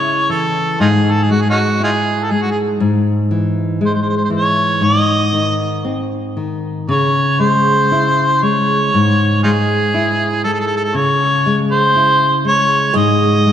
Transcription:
0.00 0.76 C#3 medium
0.00 0.28 E4 medium
0.00 0.33 C#5 medium
0.30 0.78 E3 soft
0.30 0.80 A4 medium
0.80 2.77 G#2 medium
0.80 0.88 D#4 medium
0.80 0.87 F4 medium
0.80 1.13 G#4 medium
1.11 1.25 A4 medium
1.23 1.33 G#4 medium
1.31 1.79 G#3 medium
1.31 1.43 F#4 medium
1.41 1.48 G#4 medium
1.50 1.59 C#4 medium
1.50 1.57 D#4 medium
1.50 1.80 F#4 medium
1.80 1.90 D#4 medium
1.80 2.29 E4 medium
1.80 1.90 F4 medium
1.80 2.25 G#4 medium
2.23 2.33 A4 medium
2.31 2.79 G#3 soft
2.31 2.44 G#4 medium
2.42 2.52 F#4 medium
2.50 2.57 G#4 medium
2.80 4.78 G#2 medium
3.31 3.79 E3 soft
3.81 4.30 G#3 medium
3.86 3.90 C5 medium
3.94 3.98 C5 soft
4.02 4.06 C5 medium
4.09 4.13 C5 medium
4.17 4.21 C5 medium
4.25 4.28 C5 medium
4.30 4.80 E3 soft
4.37 4.87 C#5 medium
4.81 6.84 G#2 medium
4.85 5.87 D#5 medium
5.33 5.83 D#3 soft
5.85 6.35 C4 soft
6.37 6.87 D#3 soft
6.89 8.89 C#3 medium
6.89 7.41 C#5 medium
7.40 7.90 G#3 soft
7.40 8.44 C5 medium
7.92 8.41 E4 soft
8.43 8.92 G#3 soft
8.43 9.43 C#5 loud
8.94 10.92 G#2 medium
9.43 9.93 G#3 soft
9.43 9.50 D#4 medium
9.43 9.51 F4 medium
9.43 10.41 G#4 medium
9.94 10.43 E4 medium
10.44 10.94 G#3 soft
10.44 10.51 A4 medium
10.54 10.59 A4 medium
10.60 10.66 A4 medium
10.67 10.74 A4 medium
10.76 10.82 A4 medium
10.84 10.97 A4 medium
10.94 12.90 C#3 medium
10.94 11.62 C#5 loud
11.46 11.94 G#3 soft
11.71 12.41 C5 loud
11.95 12.43 E4 medium
12.45 12.93 G#3 soft
12.45 12.98 C#5 loud
12.94 13.52 G#2 medium
12.94 13.52 G#3 medium
12.94 13.52 D#5 medium
13.46 13.52 G#3 soft

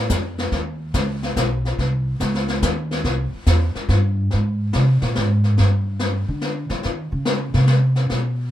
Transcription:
0.10 0.51 F2 medium
0.10 kick soft
0.10 snare medium
0.10 hi-hat pedal medium
0.38 snare soft
0.52 0.93 D#2 medium
0.52 brush sweep soft
0.52 kick soft
0.52 snare soft
0.94 1.35 C#2 medium
0.94 kick soft
0.94 snare medium
0.94 hi-hat pedal soft
1.23 snare soft
1.36 1.77 B1 medium
1.36 kick soft
1.36 snare medium
1.36 hi-hat pedal medium
1.65 snare soft
1.78 2.19 C2 medium
1.78 brush sweep soft
1.78 kick soft
1.78 snare soft
2.20 2.61 C#2 medium
2.20 kick soft
2.20 snare medium
2.20 hi-hat pedal medium
2.34 snare soft
2.48 snare soft
2.62 3.03 D#2 medium
2.62 kick soft
2.62 snare medium
2.62 hi-hat pedal medium
2.91 snare soft
3.04 3.31 C2 medium
3.04 brush sweep medium
3.04 kick soft
3.04 snare soft
3.33 muted upright bass stroke soft
3.46 3.73 E2 medium
3.46 kick soft
3.46 snare medium
3.46 hi-hat pedal soft
3.75 muted upright bass stroke soft
3.75 snare soft
3.89 4.29 G2 medium
3.89 kick soft
3.89 snare soft
4.31 4.71 G#2 medium
4.31 brush sweep soft
4.31 snare soft
4.73 5.01 C3 medium
4.73 snare medium
5.02 5.15 A#2 medium
5.02 snare soft
5.15 5.55 G#2 medium
5.15 snare medium
5.44 snare soft
5.57 6.25 G2 medium
5.57 brush sweep soft
5.57 snare soft
5.99 snare medium
6.28 6.67 D3 medium
6.41 snare medium
6.69 6.83 F3 medium
6.69 snare soft
6.83 7.11 D#3 medium
6.83 brush sweep soft
6.83 snare soft
7.12 7.51 C#3 medium
7.25 snare medium
7.54 8.06 C3 medium
7.54 snare soft
7.67 snare medium
7.96 snare soft
8.10 8.50 B2 medium
8.10 brush sweep soft
8.10 snare soft

